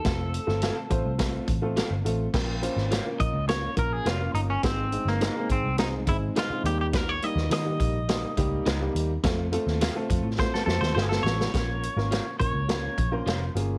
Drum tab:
CC |----------------|x---------------|----------------|----------------|
HH |x-x-x-x-x-x-x-x-|--x-x-x-x-x-x-x-|x-x-x-x-x-x-x-x-|x-x-x-x-x-x-x-x-|
SD |o--oo---o---o---|o--oo---o---o---|o--oo---o---o---|o--oo---o---o---|
BD |o-----o-o-o-----|o-----o---o-----|o-----o---o-----|o-----o---o-----|

CC |----------------|----------------|
HH |x-x-x-x---------|x-x-x-x-x-x-x-x-|
SD |o--oo---oooooooo|o--oo---o---o---|
BD |o-----o-o-------|o-----o---o-----|